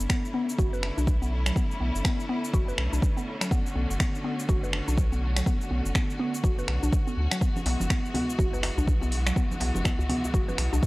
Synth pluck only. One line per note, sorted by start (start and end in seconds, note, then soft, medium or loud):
0.10 0.23 B3 medium
0.34 0.48 B3 loud
0.58 0.66 F#4 loud
0.73 0.82 B4 medium
0.97 1.03 D4 medium
1.22 1.31 B3 medium
1.46 1.55 F#3 medium
1.56 1.64 B3 medium
1.80 1.94 B3 medium
2.05 2.18 B3 medium
2.29 2.43 B3 loud
2.54 2.61 F#4 loud
2.68 2.77 B4 medium
2.93 2.98 D4 medium
3.17 3.26 B3 medium
3.41 3.50 F#3 medium
3.51 3.59 B3 medium
3.76 3.89 B3 medium
4.00 4.13 B3 medium
4.24 4.38 B3 loud
4.49 4.57 F#4 loud
4.63 4.73 B4 medium
4.88 4.93 D4 medium
5.12 5.21 B3 medium
5.37 5.45 F#3 medium
5.46 5.54 B3 medium
5.71 5.84 B3 medium
5.95 6.08 B3 medium
6.20 6.33 B3 loud
6.44 6.52 F#4 loud
6.59 6.68 B4 medium
6.83 6.88 D4 medium
7.07 7.16 B3 medium
7.32 7.40 F#3 medium
7.41 7.49 B3 medium
7.66 7.79 B3 medium
7.90 8.03 B3 medium
8.14 8.28 B3 loud
8.38 8.47 F#4 loud
8.53 8.63 B4 medium
8.78 8.83 D4 medium
9.02 9.12 B3 medium
9.27 9.35 F#3 medium
9.36 9.44 B3 medium
9.61 9.74 B3 medium
9.85 9.98 B3 medium
10.09 10.23 B3 loud
10.34 10.42 F#4 loud
10.48 10.58 B4 medium
10.73 10.78 D4 medium